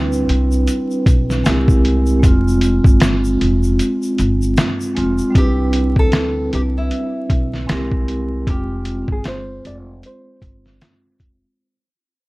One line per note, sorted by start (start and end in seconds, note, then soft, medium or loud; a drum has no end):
0.00 0.25 D2 medium
0.00 1.40 G3 medium
0.00 1.41 C4 medium
0.00 1.42 D4 medium
0.00 1.43 E4 medium
0.00 1.44 B4 medium
0.13 shaker soft
0.29 0.66 C2 medium
0.29 closed hi-hat medium
0.52 shaker medium
0.68 closed hi-hat medium
0.68 shaker medium
0.91 shaker soft
1.06 1.43 B1 medium
1.06 kick medium
1.06 closed hi-hat medium
1.06 shaker medium
1.30 snare soft
1.30 shaker medium
1.44 2.20 C2 loud
1.44 2.18 G#3 medium
1.44 2.22 C4 medium
1.44 2.24 E4 medium
1.44 2.24 G4 medium
1.44 snare loud
1.44 closed hi-hat medium
1.44 shaker medium
1.48 2.25 A#4 medium
1.68 kick medium
1.68 shaker medium
1.85 closed hi-hat medium
2.06 shaker medium
2.19 4.90 G#3 medium
2.19 kick loud
2.23 2.82 F1 loud
2.23 4.92 C4 medium
2.23 closed hi-hat medium
2.23 shaker medium
2.28 4.94 F4 medium
2.48 shaker medium
2.61 closed hi-hat medium
2.61 shaker soft
2.84 3.37 G1 medium
2.84 kick medium
2.84 shaker soft
3.00 snare loud
3.00 closed hi-hat medium
3.00 shaker medium
3.25 shaker soft
3.41 3.78 F1 medium
3.41 closed hi-hat medium
3.63 shaker medium
3.79 closed hi-hat medium
3.79 shaker medium
4.03 shaker soft
4.18 4.55 G1 medium
4.18 closed hi-hat medium
4.18 shaker soft
4.42 shaker medium
4.57 snare loud
4.57 closed hi-hat medium
4.57 shaker medium
4.81 shaker medium
4.95 5.18 F1 medium
4.95 5.34 G#3 medium
4.95 5.31 C4 medium
4.95 closed hi-hat medium
4.99 5.37 F4 medium
5.18 shaker medium
5.30 7.62 G3 medium
5.30 7.63 C4 medium
5.34 5.94 C2 medium
5.34 7.64 D4 medium
5.34 7.65 E4 medium
5.34 5.99 G4 medium
5.34 kick loud
5.34 closed hi-hat medium
5.39 7.67 B4 medium
5.73 closed hi-hat medium
5.96 6.49 D2 medium
5.96 6.54 A4 medium
5.96 kick medium
6.12 snare loud
6.12 closed hi-hat medium
6.53 6.89 C2 medium
6.53 6.60 G4 medium
6.53 closed hi-hat medium
6.78 8.05 E4 medium
6.91 closed hi-hat medium
7.30 7.67 B1 medium
7.30 kick medium
7.30 closed hi-hat medium
7.54 snare soft
7.67 8.43 C2 medium
7.67 8.41 G#3 medium
7.67 8.45 C4 medium
7.67 8.47 E4 medium
7.67 8.47 G4 medium
7.67 snare loud
7.67 closed hi-hat medium
7.71 8.48 A#4 medium
7.92 kick medium
8.08 closed hi-hat medium
8.42 11.52 G#3 medium
8.47 9.05 F1 loud
8.47 11.54 C4 medium
8.47 9.12 G4 medium
8.47 kick loud
8.47 closed hi-hat medium
8.51 11.56 F4 medium
8.85 closed hi-hat medium
9.08 9.60 G1 medium
9.08 kick medium
9.12 9.25 G#4 medium
9.24 9.66 C5 medium
9.24 snare loud
9.24 closed hi-hat medium
9.65 10.01 F1 medium
9.65 9.77 D5 medium
9.65 closed hi-hat medium
10.03 11.17 C5 medium
10.03 closed hi-hat medium
10.42 10.79 G1 medium
10.42 kick medium
10.42 closed hi-hat medium
10.66 snare soft
10.81 snare loud
10.81 closed hi-hat medium
11.20 11.42 F1 medium
11.20 kick medium
11.20 closed hi-hat medium